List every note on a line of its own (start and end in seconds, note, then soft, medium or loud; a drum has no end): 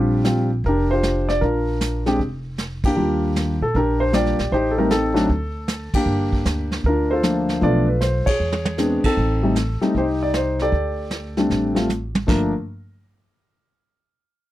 0.00 0.60 A#1 medium
0.00 0.23 G3 medium
0.00 0.23 C4 medium
0.00 0.24 D4 medium
0.00 0.24 F4 medium
0.00 0.48 G4 medium
0.24 0.48 G3 medium
0.24 0.48 C4 medium
0.24 0.49 D4 soft
0.24 0.49 F4 medium
0.24 snare medium
0.24 hi-hat pedal soft
0.64 1.38 F1 medium
0.64 0.91 G4 medium
0.64 0.89 A#4 medium
0.64 brush sweep soft
0.64 kick soft
0.68 1.40 D4 medium
0.91 1.40 F4 medium
0.91 1.40 G4 medium
0.91 1.30 C5 medium
1.03 snare medium
1.03 hi-hat pedal soft
1.29 1.41 D5 medium
1.29 snare soft
1.41 2.16 A#1 medium
1.41 2.05 D4 medium
1.41 2.16 F4 medium
1.41 2.02 A#4 medium
1.41 brush sweep soft
1.41 kick soft
1.81 snare medium
1.81 hi-hat pedal medium
2.06 2.18 G#3 medium
2.06 2.18 C4 medium
2.06 2.19 D4 medium
2.06 2.19 G4 medium
2.06 snare soft
2.19 2.93 F1 medium
2.19 brush sweep soft
2.19 kick soft
2.58 snare medium
2.58 hi-hat pedal medium
2.84 2.95 A#3 medium
2.84 2.96 D4 medium
2.84 3.58 G4 medium
2.84 kick medium
2.84 ride medium
2.96 3.57 D#2 medium
2.96 3.56 G3 medium
2.96 3.56 A#3 medium
2.96 3.56 D4 medium
2.96 3.57 F4 medium
2.96 brush sweep soft
3.36 snare medium
3.36 hi-hat pedal medium
3.61 3.74 A#2 medium
3.61 3.75 A4 medium
3.74 4.35 A#1 medium
3.74 4.12 D4 medium
3.74 4.14 G4 medium
3.74 4.02 A#4 medium
3.74 brush sweep soft
3.74 kick soft
4.00 4.14 C5 medium
4.13 4.36 G3 medium
4.13 4.36 A#3 medium
4.13 4.37 D4 medium
4.13 4.37 F4 medium
4.13 4.51 G4 medium
4.13 4.54 D5 loud
4.13 snare medium
4.13 hi-hat pedal soft
4.26 snare soft
4.39 4.51 A#1 medium
4.39 snare soft
4.52 5.26 A1 medium
4.52 4.78 D#4 medium
4.52 5.27 G4 medium
4.52 4.70 C5 medium
4.52 brush sweep soft
4.52 kick soft
4.71 4.78 A4 medium
4.78 4.89 G3 medium
4.78 4.90 A3 medium
4.78 4.90 C4 medium
4.78 4.90 D#4 medium
4.78 4.92 A#4 medium
4.91 5.14 C4 medium
4.91 5.28 D#4 medium
4.91 5.97 A4 loud
4.91 snare medium
4.91 hi-hat pedal medium
5.14 5.27 F#3 medium
5.14 5.27 A3 medium
5.14 5.28 C4 medium
5.14 5.28 D4 medium
5.14 snare soft
5.29 5.90 D2 medium
5.29 brush sweep soft
5.29 kick soft
5.68 snare medium
5.68 hi-hat pedal medium
5.94 6.82 A#3 medium
5.94 6.82 D4 medium
5.94 6.81 G4 medium
5.94 muted upright bass stroke soft
5.94 kick medium
5.94 ride medium
6.06 6.43 G1 medium
6.06 brush sweep soft
6.33 kick medium
6.45 6.82 D2 medium
6.45 snare medium
6.45 hi-hat pedal medium
6.72 snare soft
6.84 7.58 D2 medium
6.84 7.11 F4 medium
6.84 7.12 A#4 medium
6.84 brush sweep soft
6.84 kick soft
6.88 7.22 D4 medium
7.11 7.60 F4 medium
7.11 7.60 A4 medium
7.11 7.64 C5 medium
7.22 7.60 F3 medium
7.22 7.61 A3 soft
7.22 7.62 A#3 soft
7.22 7.62 D4 medium
7.22 snare medium
7.22 hi-hat pedal medium
7.49 snare soft
7.61 8.23 B1 medium
7.61 7.85 F3 medium
7.61 7.85 A3 medium
7.61 7.86 B3 medium
7.61 7.86 D4 medium
7.61 8.37 F4 medium
7.61 7.87 D5 medium
7.61 brush sweep soft
7.61 kick soft
7.65 8.37 A4 medium
7.88 8.00 B4 medium
8.01 8.25 C5 medium
8.01 snare medium
8.01 hi-hat pedal medium
8.26 9.01 G#4 medium
8.26 9.00 C#5 medium
8.26 muted upright bass stroke soft
8.26 kick medium
8.26 ride medium
8.40 9.00 E2 medium
8.52 high tom medium
8.65 high tom medium
8.78 9.01 G#3 medium
8.78 9.02 B3 medium
8.78 9.02 C4 soft
8.78 9.02 D4 medium
8.78 snare soft
8.78 hi-hat pedal medium
9.04 9.43 C4 medium
9.04 9.43 D#4 medium
9.04 9.79 A4 medium
9.04 muted upright bass stroke soft
9.04 kick medium
9.04 crash medium
9.17 9.78 A1 medium
9.17 brush sweep soft
9.17 kick soft
9.43 9.55 G3 medium
9.43 9.55 A3 medium
9.43 9.55 C4 medium
9.43 9.56 D#4 medium
9.56 snare medium
9.56 hi-hat pedal medium
9.81 9.93 G3 medium
9.81 9.94 A3 medium
9.81 9.94 C4 medium
9.81 9.94 D#4 medium
9.81 snare soft
9.95 10.69 C2 medium
9.95 10.70 D#4 medium
9.95 10.60 G4 medium
9.95 10.03 C5 medium
9.95 brush sweep soft
9.95 kick soft
10.23 10.35 D5 medium
10.34 10.62 C5 medium
10.34 snare medium
10.34 hi-hat pedal soft
10.59 11.86 G4 medium
10.59 11.86 A4 medium
10.59 11.86 D5 medium
10.59 snare soft
10.72 11.46 D2 medium
10.72 brush sweep soft
10.72 kick soft
11.11 snare medium
11.11 hi-hat pedal soft
11.37 11.73 G3 medium
11.37 11.74 A3 medium
11.37 11.74 C4 medium
11.37 11.74 D4 medium
11.37 snare soft
11.50 12.24 A1 medium
11.50 snare soft
11.75 11.87 G3 medium
11.75 11.87 A3 medium
11.75 11.88 C4 medium
11.75 11.88 F4 medium
11.75 snare medium
11.90 hi-hat pedal soft
11.90 high tom medium
12.15 high tom medium
12.27 12.52 G1 medium
12.27 12.50 F3 medium
12.27 12.51 A3 medium
12.27 12.51 A#3 medium
12.27 12.51 D4 medium
12.27 12.53 A#4 medium
12.27 kick medium
12.27 snare medium
12.27 crash medium